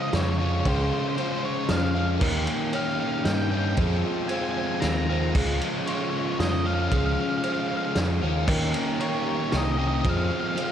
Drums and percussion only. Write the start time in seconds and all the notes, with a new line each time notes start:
0.13 snare, ride
0.65 kick, ride
1.18 ride
1.69 snare, ride
2.21 kick, crash
2.47 ride
2.73 ride
3.25 snare, ride
3.77 kick, ride
4.29 ride
4.82 snare, ride
5.35 kick, crash
5.61 ride
5.87 ride
6.40 snare, ride
6.92 kick, ride
7.43 ride
7.95 snare, ride
8.48 kick, crash
8.74 ride
9.00 ride
9.52 snare, ride
10.05 kick, ride
10.57 ride